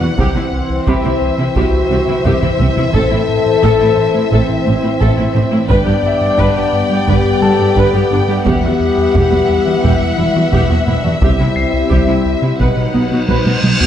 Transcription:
Already playing: analog synth pad F#3 E4 B4 D5, violin section B4 F#5, grand piano E5
0.01 cello section E2, analog synth bass E3, viola section F#4
0.18 analog synth bass C2, double bass section C2, cello section C3, analog synth pad E3 C5 E5, trombone section E3 C4, french horn section C4, viola section G4, violin section C5, taiko
0.35 analog synth bass C3, cello section C3, viola section E4
0.52 analog synth bass C2
0.69 analog synth bass C2
0.87 analog synth bass C2, double bass section C2, cello section C3, viola section G4, violin section E5, grand piano B5, taiko
1.04 analog synth bass C2, cello section C3, viola section E4
1.21 analog synth bass C2
1.38 analog synth bass C3, cello section C3, viola section E4
1.55 analog synth bass C2, double bass section C2, cello section C3, french horn section F#4, viola section G4, taiko
1.72 analog synth bass C2
1.90 double bass section C2, analog synth bass C3, cello section C3, viola section C4
2.07 analog synth bass C3, cello section C3, viola section E4
2.24 analog synth bass C2, double bass section C2, cello section C3, french horn section E4, viola section G4, taiko low-mid
2.42 analog synth bass C2, cello section C3, viola section E4, taiko low-mid
2.59 analog synth bass C2, double bass section C2, cello section C3, viola section C4, taiko mid
2.76 analog synth bass C3, cello section C3, viola section E4, taiko low
2.93 double bass section A1, analog synth bass A2, cello section A2, analog synth pad E4, viola section A4, french horn section A4, taiko
3.11 cello section A2, analog synth bass A3, viola section E4
3.28 analog synth bass A2
3.46 analog synth bass A2
3.63 double bass section A1, analog synth bass A2, cello section A2, viola section A4, taiko
3.80 analog synth bass A2, cello section A2, viola section E4
3.97 analog synth bass A2
4.14 cello section A2, analog synth bass A3, viola section E4
4.31 double bass section A1, analog synth bass A2, cello section A2, french horn section C4, viola section A4, taiko
4.49 analog synth bass A2
4.66 double bass section A1, cello section A2, analog synth bass A3, viola section C4
4.83 cello section A2, analog synth bass A3, viola section E4
5.00 double bass section A1, analog synth bass A2, cello section A2, viola section A4, taiko
5.18 analog synth bass A2, cello section A2, viola section E4
5.34 double bass section A1, analog synth bass A2, cello section A2, viola section C4
5.51 cello section A2, analog synth bass A3, viola section E4
5.69 double bass section G1, analog synth bass G2, cello section G2, analog synth pad G3 B3 B4 D5, trombone section G3 B3, french horn section D4, viola section B4, violin section D5 G5, taiko
5.86 cello section G2, analog synth bass G3, viola section G4
6.03 analog synth bass G2, grand piano E5
6.21 analog synth bass G2
6.38 double bass section G1, analog synth bass G2, cello section G2, viola section B4, taiko
6.56 analog synth bass G2, cello section G2, viola section G4
6.73 analog synth bass G2
6.90 cello section G2, analog synth bass G3, viola section G4
7.07 double bass section G1, analog synth bass G2, cello section G2, french horn section G4, viola section B4, taiko
7.25 analog synth bass G2
7.42 double bass section G1, cello section G2, analog synth bass G3, viola section D4, grand piano A4 A5
7.59 cello section G2, analog synth bass G3, viola section G4
7.77 double bass section G1, analog synth bass G2, cello section G2, viola section B4, taiko
7.94 analog synth bass G2, cello section G2, viola section G4
8.11 double bass section G1, analog synth bass G2, cello section G2, viola section D4
8.29 cello section G2, analog synth bass G3, viola section G4
8.46 double bass section E1, cello section E2, analog synth bass E2, trombone section E3, analog synth pad G3 E5, viola section G4, french horn section G4, violin section E5 F#5, taiko
8.63 cello section E2, analog synth bass E3, viola section F#4
8.81 analog synth bass E2
8.98 analog synth bass E2
9.15 double bass section E1, analog synth bass E2, cello section E2, viola section G4, taiko
9.32 cello section E2, analog synth bass E2, viola section F#4
9.49 analog synth bass E2
9.66 cello section E2, analog synth bass E3, viola section F#4
9.83 double bass section E1, cello section E2, analog synth bass E2, french horn section E4, viola section G4, taiko
10.01 analog synth bass E2
10.18 double bass section E1, cello section E2, analog synth bass E3, viola section E4
10.35 cello section E2, analog synth bass E3, viola section F#4
10.53 double bass section E1, analog synth bass E2, cello section E2, french horn section B3, viola section G4, taiko
10.70 cello section E2, analog synth bass E2, viola section F#4
10.76 french horn section C4
10.87 double bass section E1, analog synth bass E2, cello section E2, viola section E4
10.99 french horn section D4
11.05 cello section E2, analog synth bass E3, viola section F#4
11.21 analog synth bass C2, double bass section C2, cello section C3, trombone section G3 C4, analog synth pad G3 C4 G4, french horn section E4, viola section G4, violin section E5, taiko, reverse cymbal
11.39 analog synth bass C3, cello section C3, viola section E4
11.56 analog synth bass C2, grand piano C7
11.73 analog synth bass C2
11.90 analog synth bass C2, double bass section C2, cello section C3, viola section G4, taiko
12.08 analog synth bass C2, cello section C3, viola section E4
12.25 analog synth bass C2
12.42 analog synth bass C3, cello section C3, viola section E4
12.59 double bass section B1, cello section B2, analog synth bass B2, trombone section F#3 D#4, analog synth pad F#3 D#4 D#5 F#5, french horn section D#4, viola section B4, violin section B4 F#5, taiko
12.77 analog synth bass B2
12.94 double bass section B1, cello section B2, analog synth bass B3, viola section D#4
13.11 cello section B2, analog synth bass B3, viola section F#4
13.28 double bass section B1, cello section B2, analog synth bass B2, french horn section C3, viola section B4, violin section C5, taiko high
13.46 cello section B2, analog synth bass B2, viola section F#4, taiko high
13.63 double bass section B1, cello section B2, analog synth bass B2, viola section D#4, taiko high
13.80 cello section B2, analog synth bass B3, viola section F#4, taiko low

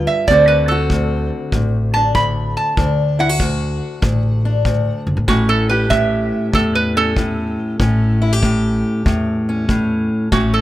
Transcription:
Already playing: steel-string acoustic guitar G2 D3 B3 F4 G4
0.07 resonator guitar played with a steel bar E5
0.28 upright bass D2, steel-string acoustic guitar D2 D3 C4 D4, resonator guitar played with a steel bar D5, kick
0.32 steel-string acoustic guitar F#4
0.48 resonator guitar played with a steel bar B4
0.68 steel-string acoustic guitar F#4, resonator guitar played with a steel bar A4
0.90 steel-string acoustic guitar D2, kick
1.52 upright bass A1, steel-string acoustic guitar D2, kick
1.94 steel-string acoustic guitar D4, resonator guitar played with a steel bar A5
2.15 steel-string acoustic guitar D2, resonator guitar played with a steel bar B5, kick
2.57 resonator guitar played with a steel bar A5
2.77 upright bass D2, steel-string acoustic guitar D2 D4, kick
3.19 steel-string acoustic guitar E4, resonator guitar played with a steel bar F#5
3.29 steel-string acoustic guitar F#4
3.40 steel-string acoustic guitar D2, kick
4.02 upright bass A1, steel-string acoustic guitar D2, kick
4.45 steel-string acoustic guitar D4
4.65 steel-string acoustic guitar D2, kick
5.07 upright bass F#1
5.17 upright bass A1
5.28 upright bass A1, steel-string acoustic guitar A2 C#4, resonator guitar played with a steel bar F#4, kick
5.49 resonator guitar played with a steel bar A4
5.69 steel-string acoustic guitar G4, resonator guitar played with a steel bar B4
5.90 steel-string acoustic guitar A2, resonator guitar played with a steel bar E5, kick
6.53 upright bass E2, steel-string acoustic guitar A2, resonator guitar played with a steel bar A4, kick
6.75 resonator guitar played with a steel bar B4
6.97 steel-string acoustic guitar C#4, resonator guitar played with a steel bar A4
7.17 steel-string acoustic guitar A2, kick
7.80 upright bass A1, steel-string acoustic guitar A2 C#4, kick
8.22 steel-string acoustic guitar E4
8.33 steel-string acoustic guitar G4
8.42 steel-string acoustic guitar A2, kick
9.06 upright bass E2, steel-string acoustic guitar A2, kick
9.49 steel-string acoustic guitar C#4
9.69 steel-string acoustic guitar A2, kick
10.32 upright bass A1, steel-string acoustic guitar A2 C#4, resonator guitar played with a steel bar F#4, kick
10.54 resonator guitar played with a steel bar A4

